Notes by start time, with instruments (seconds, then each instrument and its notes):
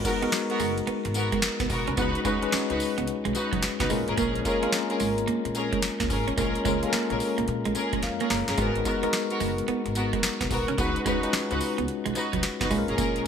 Already playing: tine electric piano G#3 B3 D#4 F#4 A#4
0.04 tine electric piano G#3 B3 D#4 F#4 A#4, string section B3 F#4 A#4, muted clean electric guitar stroke, kick, closed hi-hat, tambourine
0.22 tine electric piano G#3 B3 D#4 F#4 A#4, clean electric guitar B3, muted upright bass stroke, closed hi-hat
0.32 snare, closed hi-hat, tambourine
0.50 string section B3 F#4 A#4, closed hi-hat
0.60 upright bass F#1, clean electric guitar G#3, open hi-hat, tambourine
0.78 closed hi-hat
0.87 clean electric guitar B3, muted upright bass stroke, closed hi-hat
1.05 upright bass G#1, muted clean electric guitar stroke, closed hi-hat
1.14 string section B3 F#4 A#4, closed hi-hat, tambourine
1.32 clean electric guitar G#3, kick, closed hi-hat
1.42 snare, closed hi-hat, tambourine
1.60 upright bass B1, clean electric guitar B3, kick, snare, closed hi-hat
1.70 upright bass B1, string section B3 F#4 A#4, muted clean electric guitar stroke, kick, open hi-hat, tambourine
1.87 upright bass C2, clean electric guitar C#4, closed hi-hat
1.97 upright bass C#2, tine electric piano G#3 C#4 D#4 F#4 B4, clean electric guitar B3, string section D#4 F#4 B4, kick, closed hi-hat, tambourine
2.15 closed hi-hat
2.24 upright bass D#2, tine electric piano G#3 C#4 D#4 F#4 B4, clean electric guitar G#3, string section D#4 F#4 B4, kick, closed hi-hat, tambourine
2.42 tine electric piano G#3 C#4 D#4 F#4 B4, muted clean electric guitar stroke, closed hi-hat
2.52 clean electric guitar C#4, muted upright bass stroke, snare, closed hi-hat, tambourine
2.70 upright bass C#2, string section D#4 F#4 B4, muted clean electric guitar stroke, closed hi-hat
2.80 open hi-hat, tambourine
2.98 upright bass C#2, clean electric guitar B3, closed hi-hat
3.07 closed hi-hat
3.25 upright bass B1, clean electric guitar G#3, closed hi-hat
3.35 string section D#4 F#4 B4, muted clean electric guitar stroke, closed hi-hat, tambourine
3.52 upright bass C#2, clean electric guitar F#3, kick, closed hi-hat
3.62 muted clean electric guitar stroke, snare, closed hi-hat, tambourine
3.80 upright bass C#2, clean electric guitar B3, string section D#4 F#4 B4, kick, snare, closed hi-hat
3.90 upright bass A#1, tine electric piano G#3 A#3 C#4 F4 A#4, clean electric guitar G#3, open hi-hat, tambourine
4.07 upright bass A1, string section C#4 G#4 A#4, closed hi-hat
4.17 upright bass A#1, clean electric guitar A#3, string section C#4 G#4 A#4, kick, closed hi-hat, tambourine
4.35 closed hi-hat
4.45 tine electric piano G#3 A#3 C#4 F4 A#4, string section C#4 G#4 A#4, muted clean electric guitar stroke, kick, closed hi-hat, tambourine
4.62 tine electric piano G#3 A#3 C4 F4 A#4, clean electric guitar C#4, muted upright bass stroke, closed hi-hat
4.69 tine electric piano C#4, snare, closed hi-hat, tambourine
4.90 string section C#4 G#4 A#4, closed hi-hat
5.00 upright bass G#1, clean electric guitar G#3, open hi-hat, tambourine
5.18 closed hi-hat
5.27 clean electric guitar A#3, muted upright bass stroke, closed hi-hat
5.45 upright bass A#1, muted clean electric guitar stroke, closed hi-hat
5.55 string section C#4 G#4 A#4, closed hi-hat, tambourine
5.73 clean electric guitar G#3, kick, closed hi-hat
5.82 snare, closed hi-hat, tambourine
6.00 upright bass C#2, clean electric guitar A#3, kick, snare, closed hi-hat
6.10 upright bass G#1, string section C#4 G#4 A#4, muted clean electric guitar stroke, kick, open hi-hat, tambourine
6.28 upright bass A1, clean electric guitar C#4, closed hi-hat
6.37 upright bass A#1, tine electric piano G#3 A#3 C#4 F4 A#4, clean electric guitar A#3, string section C#4 G#4 A#4, kick, closed hi-hat, tambourine
6.55 closed hi-hat
6.65 upright bass C#2, tine electric piano G#3 A#3 C#4 F4 A#4, clean electric guitar G#3, string section C#4 G#4 A#4, kick, closed hi-hat, tambourine
6.82 tine electric piano G#3 A#3 C#4 F4 A4, muted clean electric guitar stroke, closed hi-hat
6.90 clean electric guitar A#3, tine electric piano A#4, muted upright bass stroke, snare, closed hi-hat, tambourine
7.10 upright bass A#1, string section C#4 G#4 A#4, muted clean electric guitar stroke, closed hi-hat
7.20 open hi-hat, tambourine
7.38 upright bass A#1, clean electric guitar A#3, closed hi-hat
7.48 upright bass A#2, closed hi-hat
7.65 upright bass A#1, clean electric guitar G#3, closed hi-hat
7.75 string section C#4 G#4 A#4, muted clean electric guitar stroke, closed hi-hat, tambourine
7.93 upright bass A#1, clean electric guitar G#3, kick, closed hi-hat
8.03 upright bass F2, tine electric piano F5, muted clean electric guitar stroke, snare, closed hi-hat
8.20 clean electric guitar A#3, string section C#4 G#4 A#4, closed hi-hat
8.30 upright bass F#1, clean electric guitar A#3, tine electric piano A#5, snare, open hi-hat
8.48 upright bass G1, string section C#4 G#4 A#4, snare, closed hi-hat
8.57 upright bass G#1, tine electric piano G#3 B3 D#4 F#4 A#4, clean electric guitar G#3, string section B3 F#4 A#4, kick, closed hi-hat, tambourine
8.75 closed hi-hat
8.85 tine electric piano G#3 B3 D#4 F#4 A#4, string section B3 F#4 A#4, muted clean electric guitar stroke, kick, closed hi-hat, tambourine
9.03 tine electric piano G#3 B3 D#4 F#4 A#4, clean electric guitar B3, muted upright bass stroke, closed hi-hat
9.13 snare, closed hi-hat, tambourine
9.30 string section B3 F#4 A#4, closed hi-hat
9.40 upright bass F#1, clean electric guitar G#3, open hi-hat, tambourine
9.58 closed hi-hat
9.68 clean electric guitar B3, muted upright bass stroke, closed hi-hat
9.86 upright bass G#1, muted clean electric guitar stroke, closed hi-hat
9.95 string section B3 F#4 A#4, closed hi-hat, tambourine
10.13 clean electric guitar G#3, kick, closed hi-hat
10.23 snare, closed hi-hat, tambourine
10.41 upright bass B1, clean electric guitar B3, kick, snare, closed hi-hat
10.50 upright bass B1, string section B3 F#4 A#4, muted clean electric guitar stroke, kick, open hi-hat, tambourine
10.68 upright bass C2, clean electric guitar C#4, closed hi-hat
10.78 upright bass C#2, tine electric piano G#3 C#4 D#4 F#4 B4, clean electric guitar B3, string section D#4 F#4 B4, kick, closed hi-hat, tambourine
10.96 closed hi-hat
11.05 upright bass D#2, tine electric piano G#3 C#4 D#4 F#4 B4, clean electric guitar G#3, string section D#4 F#4 B4, kick, closed hi-hat, tambourine
11.23 tine electric piano G#3 C#4 D#4 F4 B4, muted clean electric guitar stroke, closed hi-hat
11.30 clean electric guitar C#4, tine electric piano F#4, muted upright bass stroke, snare, closed hi-hat, tambourine
11.51 upright bass C#2, string section D#4 F#4 B4, muted clean electric guitar stroke, closed hi-hat
11.61 open hi-hat, tambourine
11.78 upright bass C#2, clean electric guitar B3, closed hi-hat
11.88 closed hi-hat
12.06 upright bass B1, clean electric guitar G#3, closed hi-hat
12.15 string section D#4 F#4 B4, muted clean electric guitar stroke, closed hi-hat, tambourine
12.33 upright bass C#2, clean electric guitar F#3, kick, closed hi-hat
12.43 muted clean electric guitar stroke, snare, closed hi-hat, tambourine
12.61 upright bass C#2, clean electric guitar B3, string section D#4 F#4 B4, kick, snare, closed hi-hat
12.70 upright bass A#1, tine electric piano G#3 A#3 C#4 F4 G#4, clean electric guitar G#3, open hi-hat, tambourine
12.78 tine electric piano A#4
12.88 upright bass A1, string section C#4 G#4 A#4, closed hi-hat
12.98 upright bass A#1, clean electric guitar A#3, string section C#4 G#4 A#4, kick, closed hi-hat, tambourine
13.16 closed hi-hat